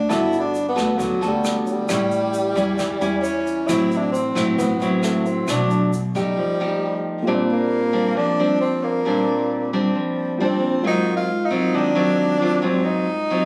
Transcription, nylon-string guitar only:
0.09 0.97 G3 medium
0.09 0.54 B3 medium
0.09 0.54 F#4 soft
0.09 0.55 A4 medium
0.76 1.18 B3 medium
0.76 1.18 F#4 medium
0.76 1.18 A4 medium
0.98 1.86 D3 soft
1.21 1.85 B3 soft
1.21 1.86 F#4 medium
1.21 1.86 A4 medium
1.88 2.76 A2 medium
1.88 2.53 G3 medium
1.88 2.53 C#4 soft
1.88 2.53 E4 medium
2.56 2.98 G3 medium
2.56 2.98 C#4 medium
2.56 2.98 E4 medium
2.79 3.66 E3 medium
3.01 3.65 G3 medium
3.01 3.65 C#4 medium
3.01 3.65 E4 medium
3.68 4.56 A2 medium
3.68 4.13 F#3 medium
3.68 4.13 C4 soft
3.68 4.13 E4 medium
4.35 4.77 F#3 medium
4.35 4.77 C4 medium
4.35 4.77 E4 medium
4.59 5.46 A2 soft
4.82 5.45 F#3 medium
4.82 5.45 C4 medium
4.82 5.45 E4 medium
5.48 6.35 B2 medium
5.48 5.92 F#3 medium
5.48 5.92 A3 medium
5.48 5.92 D4 medium
6.15 6.56 A3 medium
6.15 6.56 D#4 medium
6.15 6.56 G4 medium
6.37 7.24 F3 soft
6.60 7.23 A3 medium
6.60 7.23 D#4 medium
6.60 7.24 G4 medium
7.27 8.14 A#2 medium
7.27 7.90 G3 medium
7.27 7.90 C4 medium
7.27 7.91 D4 medium
7.93 8.34 G3 medium
7.93 8.34 C4 medium
7.93 8.34 D4 medium
8.17 9.03 F3 medium
8.39 9.02 G3 medium
8.39 9.02 C4 medium
8.39 9.02 D4 medium
9.05 9.92 A#2 medium
9.05 9.69 G3 medium
9.05 9.69 C4 medium
9.05 9.69 D4 medium
9.73 10.36 G3 medium
9.73 10.36 C4 medium
9.73 10.36 D4 medium
9.95 10.82 F3 soft
10.40 10.81 G3 medium
10.40 10.81 C4 medium
10.40 10.81 D4 medium
10.84 11.71 G#2 medium
10.84 11.28 F#3 medium
10.84 11.28 C4 medium
10.84 11.28 F4 medium
11.51 11.92 F#3 medium
11.51 11.91 C4 medium
11.51 11.92 F4 medium
11.74 12.60 D#3 medium
11.95 12.36 F#3 medium
11.95 12.36 C4 medium
11.95 12.37 F4 medium
12.41 12.59 F#3 medium
12.41 12.59 C4 medium
12.41 12.59 F4 medium
12.62 13.45 G#2 medium
12.62 13.06 F#3 medium
12.62 13.07 C4 medium
12.62 13.07 F4 medium
13.30 13.45 F#3 medium
13.30 13.45 C4 medium
13.30 13.45 F4 medium

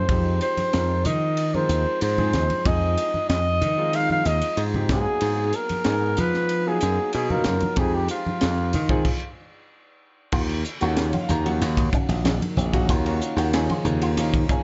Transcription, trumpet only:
0.00 0.38 C5 medium
0.42 1.07 C5 medium
1.05 1.56 D#5 medium
1.55 2.02 C5 medium
2.02 2.68 C5 medium
2.66 3.28 D#5 medium
3.29 3.97 D#5 medium
3.95 4.11 F5 medium
4.12 4.28 F5 medium
4.26 4.63 D#5 medium
4.91 5.57 G#4 medium
5.55 6.22 A#4 medium
6.20 6.69 B4 medium
6.68 7.13 G#4 medium
7.14 7.32 G#4 medium
7.31 7.80 A#4 medium
7.78 7.96 G#4 medium
7.95 8.10 G4 medium
8.10 9.34 F4 medium

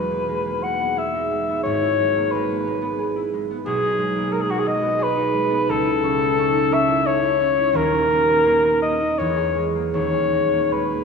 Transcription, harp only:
0.00 1.68 E1 medium
0.00 1.68 E2 medium
0.00 0.27 G#3 soft
0.00 0.80 B3 soft
0.00 1.13 D#4 soft
0.11 0.42 A#3 soft
0.29 0.62 G#3 medium
0.46 0.76 A#3 soft
0.63 1.30 G#3 soft
0.81 1.47 B3 soft
0.97 2.97 G#4 soft
1.14 1.68 D#4 medium
1.31 1.98 G#3 soft
1.49 2.81 B3 medium
1.65 3.70 G#1 medium
1.82 3.15 E4 soft
1.99 2.34 G#3 medium
2.16 2.45 A#3 medium
2.35 2.66 G#3 medium
2.51 2.79 A#3 soft
2.68 3.32 G#3 medium
2.82 3.49 B3 medium
2.99 4.98 G#4 medium
3.16 3.70 E4 medium
3.34 3.97 G#3 soft
3.51 4.80 B3 medium
3.66 5.71 B1 medium
3.82 5.14 D#4 medium
3.98 4.32 G#3 medium
4.16 4.45 A#3 soft
4.33 4.65 G#3 medium
4.49 4.78 A#3 medium
4.66 5.33 G#3 medium
4.82 5.49 B3 medium
4.99 5.71 G#4 medium
5.15 5.71 D#4 medium
5.34 5.72 G#3 medium
5.50 5.71 B3 medium
5.69 7.78 C#2 medium
5.85 6.87 E4 medium
6.03 6.37 C#4 medium
6.22 6.50 D#4 medium
6.38 6.70 C#4 medium
6.53 6.83 D#4 soft
6.71 7.07 C#4 medium
6.88 7.21 E4 medium
7.08 7.39 C#4 medium
7.22 7.56 E4 medium
7.40 7.78 C#4 medium
7.58 7.78 E4 medium
7.73 9.19 D#1 medium
7.73 9.20 D#2 medium
7.93 9.20 G4 medium
8.10 8.44 A#3 medium
8.29 8.58 B3 medium
8.45 8.80 A#3 medium
8.62 8.93 B3 soft
8.82 9.21 A#3 medium
9.00 9.21 D#4 medium
9.19 9.98 E2 medium
9.36 10.11 G#4 medium
9.55 10.31 G#3 soft
9.75 10.08 A#3 soft
9.93 11.04 D#1 medium
9.93 11.04 D#2 medium
10.13 11.04 G#4 soft
10.32 10.70 G#3 soft
10.53 10.86 A#3 soft
10.71 11.04 G#3 medium
10.91 11.04 A#3 soft

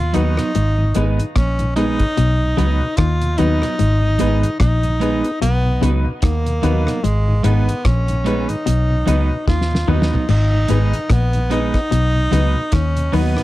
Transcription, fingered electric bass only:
0.00 0.12 D#2 loud
0.16 0.38 D#2 medium
0.56 0.94 G#1 loud
0.97 1.18 G#1 loud
1.36 1.96 A#1 medium
2.18 2.56 B1 loud
2.59 2.80 C#2 medium
2.98 3.36 D#2 medium
3.40 3.62 D#2 medium
3.81 4.18 G#1 loud
4.21 4.43 G#1 medium
4.61 5.21 A#1 medium
5.42 5.80 B1 medium
5.83 6.05 C#2 medium
6.23 6.61 D#2 medium
6.64 6.86 D#2 medium
7.04 7.42 G#1 loud
7.45 7.67 G#1 loud
7.86 8.46 A#1 medium
8.68 9.05 B1 medium
9.08 9.29 C#2 medium
9.48 9.86 D#2 medium
9.88 10.10 D#2 medium
10.29 10.67 G#1 loud
10.70 10.92 G#1 medium
11.10 11.70 A#1 medium
11.92 12.30 B1 medium
12.32 12.54 C#2 medium
12.73 13.11 D#2 medium
13.14 13.35 D#2 medium

